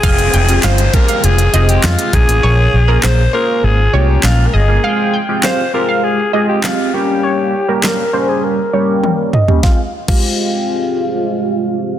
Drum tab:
CC |----------------|----------------|----------------|----------------|
HH |xxxxxxxxxxxxxxxx|----------------|----------------|----------------|
CP |----x-------x---|----x-------x---|----x-------x---|----x-----------|
SD |----o-------o---|----o-------o---|----o-------o---|----o-----------|
T1 |----------------|----------------|----------------|------------o---|
T2 |----------------|----------------|----------------|--------------o-|
FT |----------------|----------------|----------------|---------------o|
BD |o-----o-------o-|----------------|----------------|----------------|

CC |---x------------|
HH |----------------|
CP |----------------|
SD |o---------------|
T1 |----------------|
T2 |----------------|
FT |----------------|
BD |o--o------------|